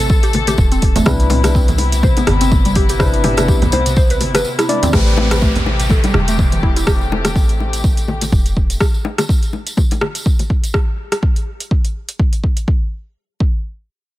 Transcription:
Already playing: 808-style bass A1, string section C3 A3 A4
0.09 synth pluck A4, kick, tambourine
0.23 synth pluck G4, closed hi-hat, tambourine
0.33 open hi-hat, low bongo, high conga
0.47 synth pluck G4, closed hi-hat, tambourine, low bongo
0.58 808-style bass E1, kick, tambourine
0.72 synth pluck C4, closed hi-hat, tambourine
0.82 kick, open hi-hat
0.96 synth pluck A3, closed hi-hat, tambourine, low conga
1.06 808-style bass C2, string section C3 B3 E4, synth pluck C4, tine electric piano D4 E4 B4, kick, cross-stick, mid tom, tambourine, high conga
1.20 closed hi-hat, tambourine
1.30 synth pluck C4, mid tom, open hi-hat, high bongo
1.44 tine electric piano D4 E4 B4, cross-stick, closed hi-hat, tambourine, low bongo, high conga
1.55 synth pluck C4, kick, tambourine
1.68 closed hi-hat, tambourine, low conga
1.78 open hi-hat, high bongo
1.92 closed hi-hat, tambourine, high conga
2.03 synth pluck C5, kick, tambourine, low bongo, high conga
2.17 synth pluck B3, closed hi-hat, tambourine, high bongo
2.27 808-style bass G1, cross-stick, open hi-hat, low bongo, high conga, low conga
2.41 synth pluck C4, closed hi-hat, tambourine
2.51 kick, tambourine, high conga
2.65 synth pluck G3, closed hi-hat, tambourine, low bongo
2.75 synth pluck G4, kick, open hi-hat
2.89 synth pluck G4, closed hi-hat, tambourine
2.99 tine electric piano D4 E4 B4, synth pluck C5, kick, cross-stick, mid tom, tambourine, high conga
3.13 closed hi-hat, tambourine
3.24 synth pluck G4, mid tom, open hi-hat, high bongo
3.37 tine electric piano D4 E4 B4, cross-stick, closed hi-hat, tambourine, low bongo, high conga
3.48 808-style bass C2, synth pluck G4, kick, tambourine
3.62 closed hi-hat, tambourine, low conga
3.72 synth pluck C5, open hi-hat, high bongo
3.86 closed hi-hat, tambourine, high conga
3.96 synth pluck C5, kick, tambourine
4.10 synth pluck B4, closed hi-hat, tambourine
4.20 808-style bass G1, open hi-hat, low bongo, high conga
4.34 synth pluck B4, cross-stick, closed hi-hat, tambourine, low bongo
4.45 tambourine
4.59 synth pluck E4, cross-stick, closed hi-hat, tambourine
4.69 tine electric piano D4 E4 D5, open hi-hat, high tom
4.83 synth pluck C4, closed hi-hat, mid tom, tambourine, low conga
4.93 808-style bass A1, string section C3 A3 G4, synth pluck A3, tine electric piano C4 G4 B4, kick, cross-stick, crash, tambourine, downlifter, high conga
5.07 tambourine
5.17 synth pluck A3, high bongo
5.31 tine electric piano C4 G4 B4, cross-stick, closed hi-hat, tambourine, low bongo, high conga
5.41 synth pluck A3, kick, tambourine
5.56 closed hi-hat, tambourine, low conga
5.66 high bongo
5.80 closed hi-hat, tambourine, high conga
5.90 synth pluck A4, kick, tambourine, low bongo, high conga
6.04 synth pluck G3, closed hi-hat, tambourine, high bongo
6.13 808-style bass E1, cross-stick, low bongo, high conga, low conga
6.28 synth pluck A3, closed hi-hat, tambourine
6.38 kick, tambourine, high conga
6.52 synth pluck E3, closed hi-hat, tambourine, low bongo
6.63 synth pluck E4, kick
6.76 synth pluck E4, closed hi-hat, tambourine
6.87 kick, cross-stick, tambourine
7.01 tambourine
7.12 high bongo
7.25 cross-stick, closed hi-hat, tambourine, low bongo
7.36 808-style bass A1, kick, tambourine
7.49 closed hi-hat, tambourine
7.60 high bongo
7.73 closed hi-hat, tambourine
7.84 kick, tambourine
7.97 closed hi-hat, tambourine
8.08 low bongo
8.21 closed hi-hat, tambourine, low bongo
8.32 808-style bass E1, kick, tambourine
8.46 closed hi-hat, tambourine
8.57 kick
8.70 closed hi-hat, tambourine
8.80 kick, cross-stick, tambourine
8.94 tambourine
9.05 high bongo
9.18 cross-stick, closed hi-hat, tambourine, low bongo
9.29 kick, tambourine
9.43 closed hi-hat, tambourine
9.53 high bongo
9.67 closed hi-hat, tambourine
9.77 kick, tambourine, low bongo
9.91 closed hi-hat, tambourine, high bongo
10.01 cross-stick, low bongo
10.15 closed hi-hat, tambourine
10.26 kick, tambourine
10.39 closed hi-hat, tambourine, low bongo
10.50 kick
10.64 closed hi-hat, tambourine
10.74 kick, cross-stick
11.12 cross-stick, closed hi-hat
11.23 kick
11.36 closed hi-hat
11.60 closed hi-hat
11.71 kick
11.85 closed hi-hat
12.09 closed hi-hat
12.19 kick
12.33 closed hi-hat
12.44 kick
12.57 closed hi-hat
12.68 kick
13.40 kick

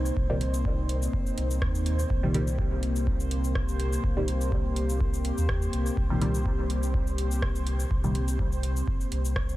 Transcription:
Already playing: sub bass C2, analog synth pad A#3 C4 D#4, synth texture C5
0.06 shaker
0.17 sub bass C2, kick
0.30 synth stab A#2 C3 D#3 G3
0.41 closed hi-hat
0.54 closed hi-hat, shaker
0.65 kick
0.89 closed hi-hat
1.02 shaker
1.13 sub bass G1, kick
1.27 shaker
1.38 sub bass C2, closed hi-hat
1.51 shaker
1.62 sub bass D#2, kick, cross-stick
1.75 shaker
1.86 closed hi-hat
1.99 shaker
2.10 sub bass C2, analog synth pad G4, kick
2.23 synth stab A#2 C3 D#3 G3
2.34 synth stab A#2 C3 D#3 G3, closed hi-hat
2.48 shaker
2.59 kick
2.83 closed hi-hat
2.96 shaker
3.07 kick
3.20 shaker
3.31 closed hi-hat
3.44 shaker
3.55 kick, cross-stick
3.68 shaker
3.80 closed hi-hat
3.93 shaker
4.04 sub bass C2, kick
4.17 synth stab A#2 C3 D#3 G3
4.28 closed hi-hat
4.41 shaker
4.52 kick
4.76 closed hi-hat
4.89 shaker
5.01 kick
5.14 shaker
5.25 closed hi-hat
5.38 sub bass D#2, shaker
5.49 kick, cross-stick
5.62 shaker
5.73 sub bass C2, closed hi-hat
5.86 shaker
5.97 sub bass C2, kick
6.10 synth stab A#2 C3 D#3 G3
6.21 synth stab A#2 C3 D#3 G3, closed hi-hat
6.35 shaker
6.46 kick
6.70 closed hi-hat
6.83 shaker
6.94 kick
7.07 shaker
7.18 closed hi-hat
7.31 shaker
7.42 kick, cross-stick
7.55 shaker
7.67 closed hi-hat
7.80 shaker
7.91 sub bass C2, kick
8.04 synth stab A#2 C3 D#3 G3, shaker
8.15 closed hi-hat
8.28 closed hi-hat, shaker
8.39 kick
8.52 shaker
8.63 closed hi-hat
8.76 shaker
8.88 sub bass G1, kick
9.01 shaker
9.12 sub bass C2, closed hi-hat
9.25 shaker
9.36 kick, cross-stick
9.49 shaker

